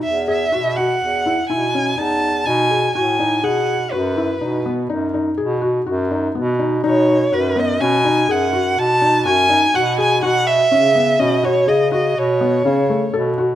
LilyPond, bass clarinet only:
\new Staff \with { instrumentName = "Bass clarinet" } { \clef bass \time 7/4 \key b \mixolydian \tempo 4 = 124 e,4 b,4 e,4 b,4 e,4 b,4 a,4 | b,4 fis,4 b,4 fis,4 b,4 fis,4 b,4 | b,4 fis,4 b,4 fis,4 b,4 fis,4 b,4 | b,4 cis4 b,4 cis4 b,4 cis4 b,4 | }